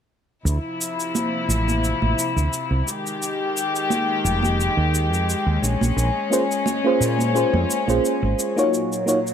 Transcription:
0.45 fretless electric bass D2, string section C3 F3 E4, shaker
0.81 shaker
1.00 shaker
1.15 high conga, shaker
1.49 fretless electric bass A1, shaker
1.68 high conga, shaker
1.84 shaker
2.02 fretless electric bass A1, high conga
2.19 shaker
2.36 fretless electric bass D2, shaker
2.53 shaker
2.71 fretless electric bass C2
2.86 string section D#3 G#3 G4, shaker
3.07 shaker
3.22 shaker
3.57 shaker
3.76 shaker
3.90 high conga, shaker
4.25 fretless electric bass F1, shaker
4.43 high conga, shaker
4.61 shaker
4.77 fretless electric bass D#2
4.95 shaker
5.12 fretless electric bass F2, shaker
5.30 shaker
5.47 fretless electric bass D#2
5.62 fretless electric bass A#1, string section C#4, shaker
5.81 fretless electric bass A#1, high conga, shaker
5.97 fretless electric bass A#1, shaker
6.30 fm electric piano A#3 C#4 F4 G#4 C5, shaker
6.51 shaker
6.66 high conga, shaker
6.84 fm electric piano A#3 C#4 F4 G#4 C5
7.01 fretless electric bass A#2, shaker
7.19 high conga, shaker
7.34 fm electric piano A#3 C#4 F4 G#4 C5, shaker
7.53 fretless electric bass F2, high conga
7.71 shaker
7.87 fretless electric bass A#1, fm electric piano A#3 C#4 F4 G#4 C5, shaker
8.05 shaker
8.23 fretless electric bass G#1
8.39 shaker
8.56 fm electric piano A#3 D#4 F4 F#4 C#5, shaker
8.73 string section A#2 F#3, shaker
8.93 shaker
9.06 fm electric piano A#3 D#4 F4 F#4 C#5, shaker
9.27 shaker

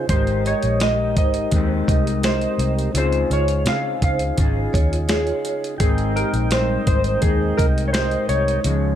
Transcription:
Already playing: clean electric guitar F4 G#4
0.08 fingered electric bass G#1, clean electric guitar G#3, tonewheel organ D#4 G4 A#4, electric slide guitar C5, kick, closed hi-hat
0.13 clean electric guitar D#4 G4, tonewheel organ D#5
0.27 closed hi-hat
0.45 vibraphone G4 D#5, electric slide guitar C#5, closed hi-hat
0.63 fingered electric bass A#1, closed hi-hat
0.80 electric slide guitar D#5, snare, closed hi-hat
1.16 fingered electric bass G#1, vibraphone D#4 C5, electric slide guitar D#5, kick, closed hi-hat
1.34 closed hi-hat
1.51 fingered electric bass D#2, clean electric guitar G#3 C4 D#4, kick, closed hi-hat
1.56 clean electric guitar G4
1.88 fingered electric bass C2, vibraphone G4 D#5, kick, closed hi-hat
2.07 closed hi-hat
2.23 vibraphone G4 D#5, electric slide guitar C5, snare, closed hi-hat
2.41 closed hi-hat
2.58 fingered electric bass C2, closed hi-hat
2.79 closed hi-hat
2.93 fingered electric bass C#2, clean electric guitar C#3 C4 F4 G#4, tonewheel organ D#4 F4 G#4, closed hi-hat
2.98 electric slide guitar C5
3.12 closed hi-hat
3.30 fingered electric bass C#2, clean electric guitar F4 G#4, vibraphone F4 C#5, electric slide guitar C#5, closed hi-hat
3.48 closed hi-hat
3.65 clean electric guitar C#3 C4 F4 G#4, fingered electric bass C#3, electric slide guitar F5, snare, closed hi-hat
4.02 fingered electric bass C#2, vibraphone D#4 C5, electric slide guitar F5, kick, closed hi-hat
4.19 closed hi-hat
4.36 fingered electric bass G#1, clean electric guitar C#3 F4, kick, closed hi-hat
4.42 clean electric guitar G#4
4.73 fingered electric bass D#2, vibraphone F4 C#5, kick, closed hi-hat
4.93 closed hi-hat
5.08 vibraphone F4 C#5, electric slide guitar G#4, snare, closed hi-hat
5.27 closed hi-hat
5.45 closed hi-hat
5.64 closed hi-hat
5.77 fingered electric bass G#1, clean electric guitar G#2, tonewheel organ D#4 A#4 G5, electric slide guitar G#4, kick, closed hi-hat
5.82 clean electric guitar C4 D#4, tonewheel organ D#5
5.98 closed hi-hat
6.16 vibraphone G4 D#5, electric slide guitar A#4, closed hi-hat
6.33 fingered electric bass A#1, closed hi-hat
6.51 clean electric guitar G#2 G3 C4 D#4, electric slide guitar C5, snare, closed hi-hat
6.87 fingered electric bass G#1, vibraphone D#4 C5, electric slide guitar C5, kick, closed hi-hat
7.04 closed hi-hat
7.22 fingered electric bass D#2, clean electric guitar G#2, electric slide guitar G#4, kick, closed hi-hat
7.27 clean electric guitar D#4
7.57 fingered electric bass C2, vibraphone G4 D#5, electric slide guitar A#4, kick, closed hi-hat
7.78 closed hi-hat
7.88 electric slide guitar C#5
7.93 vibraphone G4 D#5, electric slide guitar C5, snare, closed hi-hat
8.11 closed hi-hat
8.29 fingered electric bass C2, electric slide guitar C#5, closed hi-hat
8.48 closed hi-hat
8.62 fingered electric bass C#2, clean electric guitar C#3 F3, tonewheel organ D#4 F4 G#4, closed hi-hat
8.67 clean electric guitar G#3

